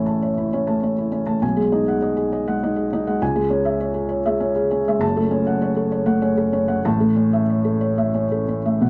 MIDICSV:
0, 0, Header, 1, 2, 480
1, 0, Start_track
1, 0, Tempo, 599401
1, 1144, Time_signature, 3, 2, 24, 8
1, 4502, Tempo, 623701
1, 5942, Tempo, 669643
1, 6948, End_track
2, 0, Start_track
2, 0, Title_t, "Felt piano"
2, 0, Program_c, 0, 0
2, 0, Control_c, 0, 64, 127
2, 0, Note_on_c, 0, 33, 68
2, 0, Note_on_c, 0, 57, 51
2, 0, Note_on_c, 0, 61, 51
2, 0, Note_on_c, 0, 64, 54
2, 0, Note_on_c, 0, 73, 53
2, 0, Note_on_c, 0, 76, 62
2, 49, Note_on_c, 0, 81, 53
2, 134, Note_off_c, 0, 73, 0
2, 136, Note_off_c, 0, 61, 0
2, 180, Note_on_c, 0, 73, 58
2, 247, Note_off_c, 0, 81, 0
2, 301, Note_off_c, 0, 64, 0
2, 301, Note_on_c, 0, 64, 55
2, 371, Note_off_c, 0, 73, 0
2, 423, Note_on_c, 0, 73, 58
2, 429, Note_on_c, 0, 61, 58
2, 491, Note_off_c, 0, 64, 0
2, 538, Note_on_c, 0, 81, 53
2, 543, Note_off_c, 0, 57, 0
2, 543, Note_on_c, 0, 57, 51
2, 613, Note_off_c, 0, 73, 0
2, 616, Note_off_c, 0, 61, 0
2, 665, Note_on_c, 0, 61, 51
2, 669, Note_on_c, 0, 73, 58
2, 732, Note_off_c, 0, 81, 0
2, 734, Note_off_c, 0, 57, 0
2, 786, Note_on_c, 0, 64, 53
2, 856, Note_off_c, 0, 61, 0
2, 858, Note_off_c, 0, 73, 0
2, 895, Note_on_c, 0, 61, 53
2, 897, Note_on_c, 0, 73, 52
2, 978, Note_off_c, 0, 64, 0
2, 1013, Note_on_c, 0, 57, 47
2, 1013, Note_on_c, 0, 81, 57
2, 1092, Note_off_c, 0, 61, 0
2, 1093, Note_off_c, 0, 73, 0
2, 1115, Note_off_c, 0, 33, 0
2, 1138, Note_on_c, 0, 80, 63
2, 1139, Note_off_c, 0, 57, 0
2, 1139, Note_off_c, 0, 81, 0
2, 1139, Note_on_c, 0, 35, 69
2, 1159, Control_c, 0, 64, 0
2, 1161, Note_off_c, 0, 76, 0
2, 1252, Note_on_c, 0, 68, 61
2, 1256, Note_on_c, 0, 56, 59
2, 1268, Control_c, 0, 64, 127
2, 1332, Note_off_c, 0, 80, 0
2, 1378, Note_on_c, 0, 63, 56
2, 1380, Note_on_c, 0, 75, 58
2, 1447, Note_off_c, 0, 68, 0
2, 1449, Note_off_c, 0, 56, 0
2, 1506, Note_on_c, 0, 78, 60
2, 1569, Note_off_c, 0, 63, 0
2, 1570, Note_off_c, 0, 75, 0
2, 1618, Note_on_c, 0, 75, 60
2, 1692, Note_off_c, 0, 78, 0
2, 1735, Note_on_c, 0, 68, 61
2, 1809, Note_off_c, 0, 75, 0
2, 1862, Note_on_c, 0, 75, 65
2, 1927, Note_off_c, 0, 68, 0
2, 1982, Note_on_c, 0, 56, 58
2, 1984, Note_on_c, 0, 78, 65
2, 2050, Note_off_c, 0, 75, 0
2, 2108, Note_on_c, 0, 63, 57
2, 2108, Note_on_c, 0, 75, 60
2, 2170, Note_off_c, 0, 56, 0
2, 2171, Note_off_c, 0, 78, 0
2, 2210, Note_on_c, 0, 68, 57
2, 2293, Note_off_c, 0, 63, 0
2, 2293, Note_off_c, 0, 75, 0
2, 2346, Note_on_c, 0, 75, 64
2, 2347, Note_on_c, 0, 63, 61
2, 2404, Note_off_c, 0, 68, 0
2, 2459, Note_on_c, 0, 78, 64
2, 2460, Note_on_c, 0, 56, 57
2, 2532, Note_off_c, 0, 75, 0
2, 2533, Note_off_c, 0, 63, 0
2, 2541, Note_off_c, 0, 35, 0
2, 2577, Note_off_c, 0, 78, 0
2, 2577, Note_on_c, 0, 37, 75
2, 2578, Note_off_c, 0, 56, 0
2, 2578, Note_on_c, 0, 80, 77
2, 2587, Control_c, 0, 64, 0
2, 2687, Note_on_c, 0, 56, 65
2, 2688, Note_on_c, 0, 68, 65
2, 2713, Control_c, 0, 64, 127
2, 2769, Note_off_c, 0, 80, 0
2, 2803, Note_on_c, 0, 61, 64
2, 2806, Note_on_c, 0, 73, 65
2, 2883, Note_off_c, 0, 56, 0
2, 2884, Note_off_c, 0, 68, 0
2, 2924, Note_on_c, 0, 76, 66
2, 3003, Note_off_c, 0, 61, 0
2, 3004, Note_off_c, 0, 73, 0
2, 3046, Note_on_c, 0, 73, 65
2, 3124, Note_off_c, 0, 76, 0
2, 3156, Note_on_c, 0, 68, 64
2, 3246, Note_off_c, 0, 73, 0
2, 3274, Note_on_c, 0, 73, 63
2, 3361, Note_off_c, 0, 68, 0
2, 3408, Note_on_c, 0, 76, 72
2, 3414, Note_on_c, 0, 56, 63
2, 3480, Note_off_c, 0, 73, 0
2, 3524, Note_on_c, 0, 73, 61
2, 3526, Note_on_c, 0, 61, 62
2, 3608, Note_off_c, 0, 76, 0
2, 3610, Note_off_c, 0, 56, 0
2, 3649, Note_on_c, 0, 68, 63
2, 3726, Note_off_c, 0, 73, 0
2, 3727, Note_off_c, 0, 61, 0
2, 3771, Note_on_c, 0, 73, 66
2, 3775, Note_on_c, 0, 61, 65
2, 3849, Note_off_c, 0, 68, 0
2, 3903, Note_on_c, 0, 56, 57
2, 3908, Note_on_c, 0, 76, 68
2, 3970, Note_off_c, 0, 73, 0
2, 3972, Note_off_c, 0, 61, 0
2, 3993, Note_off_c, 0, 37, 0
2, 3996, Note_on_c, 0, 30, 81
2, 4007, Note_on_c, 0, 42, 82
2, 4010, Note_on_c, 0, 81, 78
2, 4024, Note_off_c, 0, 56, 0
2, 4026, Note_off_c, 0, 76, 0
2, 4040, Control_c, 0, 64, 0
2, 4135, Note_on_c, 0, 57, 62
2, 4137, Note_on_c, 0, 69, 67
2, 4149, Control_c, 0, 64, 127
2, 4209, Note_off_c, 0, 81, 0
2, 4250, Note_on_c, 0, 61, 68
2, 4252, Note_on_c, 0, 73, 66
2, 4330, Note_off_c, 0, 57, 0
2, 4332, Note_off_c, 0, 69, 0
2, 4379, Note_on_c, 0, 78, 68
2, 4449, Note_off_c, 0, 61, 0
2, 4449, Note_off_c, 0, 73, 0
2, 4498, Note_on_c, 0, 73, 70
2, 4572, Note_off_c, 0, 78, 0
2, 4611, Note_on_c, 0, 69, 67
2, 4688, Note_off_c, 0, 73, 0
2, 4730, Note_on_c, 0, 73, 64
2, 4805, Note_off_c, 0, 69, 0
2, 4838, Note_on_c, 0, 57, 64
2, 4839, Note_on_c, 0, 78, 74
2, 4924, Note_off_c, 0, 73, 0
2, 4959, Note_on_c, 0, 73, 69
2, 4963, Note_on_c, 0, 61, 60
2, 5039, Note_off_c, 0, 57, 0
2, 5040, Note_off_c, 0, 78, 0
2, 5081, Note_on_c, 0, 69, 64
2, 5160, Note_off_c, 0, 73, 0
2, 5162, Note_off_c, 0, 61, 0
2, 5200, Note_on_c, 0, 73, 68
2, 5201, Note_on_c, 0, 61, 63
2, 5281, Note_off_c, 0, 69, 0
2, 5317, Note_on_c, 0, 78, 65
2, 5322, Note_on_c, 0, 57, 57
2, 5401, Note_off_c, 0, 61, 0
2, 5401, Note_off_c, 0, 73, 0
2, 5413, Note_off_c, 0, 30, 0
2, 5419, Note_off_c, 0, 42, 0
2, 5445, Note_on_c, 0, 33, 77
2, 5447, Note_off_c, 0, 78, 0
2, 5448, Note_on_c, 0, 81, 72
2, 5450, Note_off_c, 0, 57, 0
2, 5452, Note_on_c, 0, 45, 83
2, 5471, Control_c, 0, 64, 0
2, 5564, Note_on_c, 0, 69, 65
2, 5572, Note_on_c, 0, 57, 61
2, 5613, Control_c, 0, 64, 127
2, 5646, Note_off_c, 0, 81, 0
2, 5686, Note_on_c, 0, 61, 62
2, 5688, Note_on_c, 0, 73, 63
2, 5765, Note_off_c, 0, 69, 0
2, 5769, Note_off_c, 0, 57, 0
2, 5818, Note_on_c, 0, 76, 64
2, 5888, Note_off_c, 0, 61, 0
2, 5889, Note_off_c, 0, 73, 0
2, 5944, Note_on_c, 0, 73, 58
2, 6012, Note_off_c, 0, 76, 0
2, 6052, Note_on_c, 0, 69, 56
2, 6130, Note_off_c, 0, 73, 0
2, 6169, Note_on_c, 0, 73, 62
2, 6243, Note_off_c, 0, 69, 0
2, 6290, Note_on_c, 0, 76, 61
2, 6291, Note_on_c, 0, 57, 52
2, 6362, Note_off_c, 0, 73, 0
2, 6409, Note_on_c, 0, 61, 53
2, 6410, Note_on_c, 0, 73, 53
2, 6483, Note_off_c, 0, 76, 0
2, 6484, Note_off_c, 0, 57, 0
2, 6531, Note_on_c, 0, 69, 52
2, 6604, Note_off_c, 0, 61, 0
2, 6604, Note_off_c, 0, 73, 0
2, 6651, Note_on_c, 0, 61, 48
2, 6654, Note_on_c, 0, 73, 53
2, 6727, Note_off_c, 0, 69, 0
2, 6772, Note_on_c, 0, 57, 45
2, 6776, Note_on_c, 0, 76, 55
2, 6850, Note_off_c, 0, 61, 0
2, 6851, Note_off_c, 0, 73, 0
2, 6867, Note_off_c, 0, 33, 0
2, 6870, Note_off_c, 0, 45, 0
2, 6884, Note_on_c, 0, 35, 60
2, 6886, Note_on_c, 0, 47, 62
2, 6892, Note_on_c, 0, 78, 55
2, 6900, Note_off_c, 0, 57, 0
2, 6901, Note_off_c, 0, 76, 0
2, 6916, Control_c, 0, 64, 0
2, 6948, Note_off_c, 0, 35, 0
2, 6948, Note_off_c, 0, 47, 0
2, 6948, Note_off_c, 0, 78, 0
2, 6948, End_track
0, 0, End_of_file